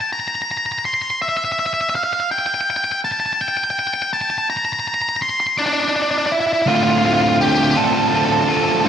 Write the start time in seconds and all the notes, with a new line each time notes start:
0.01 A5
0.13 A#5
0.20 A#5
0.28 A#5
0.35 A#5
0.42 A#5
0.51 A#5
0.57 A#5
0.66 A#5
0.72 A#5
0.79 A#5
0.85 C6
0.94 C6
1.02 C6
1.10 C6
1.22 E5
1.29 E5
1.37 E5
1.45 E5
1.52 E5
1.59 E5
1.66 E5
1.74 E5
1.81 E5
1.90 E5
1.95 F5
2.04 F5
2.13 F5
2.20 F5
2.31 G5
2.39 G5
2.46 G5
2.54 G5
2.61 G5
2.70 G5
2.76 G5
2.84 G5
2.92 G5
3.05 A5
3.12 A5
3.20 A5
3.26 A5
3.33 A5
3.41 G5
3.48 G5
3.57 G5
3.64 G5
3.70 G5
3.79 G5
3.87 G5
3.94 G5
4.02 G5
4.13 A5
4.21 A5
4.30 A5
4.38 A5
4.50 A#5
4.57 A#5
4.65 A#5
4.73 A#5
4.79 A#5
4.88 A#5
4.94 A#5
5.02 A#5
5.09 A#5
5.16 A#5
5.22 C6
5.29 C6
5.40 C6
5.47 C6
5.58 D4 D6
5.66 D4 D6
5.73 D4 D6
5.80 D4 D6
5.89 D4
5.96 D4
6.02 D4
6.11 D4
6.18 D4
6.26 D4
6.32 E4
6.40 E4
6.47 E4
6.53 E4
6.62 E4
6.66 D2 A2 D3 A3 C4 F4
6.75 F4
6.83 F4
6.90 F4
6.98 F4
7.03 D3 A3 C4 F4
7.14 F4
7.21 F4
7.29 F4
7.41 G4
7.48 G4
7.55 G4
7.63 G4
7.71 G4
7.75 D2 A2 D3 A3 C4 F4 A4
7.85 A4
7.93 A4
8.02 A4
8.08 D3 A3 A4
8.13 C4 F4 A4
8.25 A4
8.32 A4
8.41 A4
8.48 D3 A3 C4 F4 A4
8.57 A4
8.64 A4
8.72 A4
8.81 D2 A2 A4
8.85 D3 A3 F4